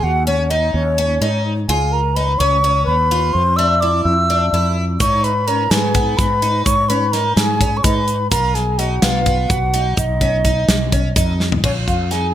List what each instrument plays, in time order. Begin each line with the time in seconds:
Already playing: twelve-string acoustic guitar F4
0.03 fretless electric bass D#2, flugelhorn F#4, flute F#5
0.27 twelve-string acoustic guitar C#4, flugelhorn C#4, flute C#5
0.50 flugelhorn D#4, twelve-string acoustic guitar D#4, flute D#5
0.74 fretless electric bass D#2, flugelhorn C#4, flute C#5
0.98 twelve-string acoustic guitar C#4
1.21 fretless electric bass G#2, twelve-string acoustic guitar D#4
1.68 fretless electric bass C#2, twelve-string acoustic guitar F4, flugelhorn G#4, flute G#5
1.91 flugelhorn A#4, flute A#5
2.15 twelve-string acoustic guitar D#4, flugelhorn B4, flute B5
2.37 fretless electric bass C#2, twelve-string acoustic guitar C#4, flugelhorn C#5, flute C#6
2.64 twelve-string acoustic guitar C#4
2.84 fretless electric bass D#2, flugelhorn B4, flute B5
3.11 twelve-string acoustic guitar F4
3.33 fretless electric bass F2, flugelhorn C5, flute C6
3.56 twelve-string acoustic guitar D4, flugelhorn E5, flute E6
3.81 twelve-string acoustic guitar E4, flugelhorn D5, flute D6
4.04 fretless electric bass F2, flugelhorn E5, flute E6
4.30 twelve-string acoustic guitar D4
4.53 fretless electric bass F2, twelve-string acoustic guitar E4
5.00 fretless electric bass G#2, twelve-string acoustic guitar D#4, flugelhorn C#5, flute C#6, kick, closed hi-hat, shaker
5.23 flugelhorn B4, flute B5, closed hi-hat
5.47 twelve-string acoustic guitar C#4, flugelhorn A#4, flute A#5, closed hi-hat
5.70 fretless electric bass G#2, twelve-string acoustic guitar B3, flugelhorn G#4, flute G#5, snare, closed hi-hat, shaker
5.95 twelve-string acoustic guitar B3, kick, closed hi-hat
6.17 fretless electric bass G#2, flugelhorn B4, flute B5, kick, snare, closed hi-hat, shaker
6.42 twelve-string acoustic guitar D#4, closed hi-hat
6.65 fretless electric bass G#2, flugelhorn C#5, flute C#6, kick, closed hi-hat, shaker
6.89 twelve-string acoustic guitar C#4, flugelhorn B4, flute B5, closed hi-hat
7.12 twelve-string acoustic guitar D#4, flugelhorn A#4, flute A#5, snare, closed hi-hat
7.36 fretless electric bass G#2, flugelhorn G#4, flute G#5, snare, closed hi-hat, shaker
7.61 twelve-string acoustic guitar C#4, kick, closed hi-hat
7.77 flugelhorn C#5, flute C#6
7.83 fretless electric bass G#2, twelve-string acoustic guitar D#4, flugelhorn B4, flute B5, kick, closed hi-hat, shaker
8.08 closed hi-hat
8.31 fretless electric bass B1, twelve-string acoustic guitar F4, flugelhorn A#4, flute A#5, kick, closed hi-hat, shaker
8.54 flugelhorn G#4, flute G#5, snare, closed hi-hat
8.78 twelve-string acoustic guitar D#4, flugelhorn F#4, flute F#5, closed hi-hat
9.02 fretless electric bass B1, twelve-string acoustic guitar B3, flugelhorn F4, flute F5, snare, closed hi-hat, shaker
9.26 twelve-string acoustic guitar B3, kick, closed hi-hat
9.49 fretless electric bass B1, flugelhorn F#4, flute F#5, kick, closed hi-hat, shaker
9.74 twelve-string acoustic guitar D#4, closed hi-hat
9.97 fretless electric bass B1, flugelhorn D#4, flute D#5, kick, closed hi-hat, shaker
10.21 twelve-string acoustic guitar C#4, kick, closed hi-hat
10.45 twelve-string acoustic guitar D#4, kick, closed hi-hat
10.68 fretless electric bass B1, snare, closed hi-hat, shaker
10.92 twelve-string acoustic guitar C#4, kick, closed hi-hat, shaker
11.16 fretless electric bass F2, twelve-string acoustic guitar D#4, kick, closed hi-hat, shaker
11.40 snare
11.52 floor tom
11.64 fretless electric bass A#1, flugelhorn C#4, twelve-string acoustic guitar F4, flute C#5, kick, crash
11.88 fretless electric bass F2, flugelhorn F4, flute F5, kick, closed hi-hat
12.11 twelve-string acoustic guitar D#4, flugelhorn G#4, flute G#5, snare, closed hi-hat